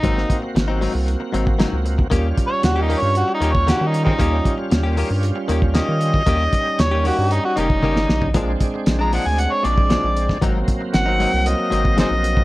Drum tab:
HH |x-x-x-o-x-x-x-x-|x-x-x-o-x-x-x-x-|x-x-x-o-x-x-x-x-|x-x-x-o-x-x-----|
SD |-o--o-------o---|----o-------o---|----o-------o---|----o--------oo-|
T1 |----------------|----------------|----------------|------------o---|
FT |----------------|----------------|----------------|---------------o|
BD |o-o--------o---o|o-o--------o---o|o-o--------o---o|o-o--------o----|

HH |x-x-x-o-x-x-x-x-|x-x-x-o-x-x-x-x-|
SD |----o-------o--o|----o-------o---|
T1 |----------------|----------------|
FT |----------------|----------------|
BD |o-o--------o---o|o-o--------o---o|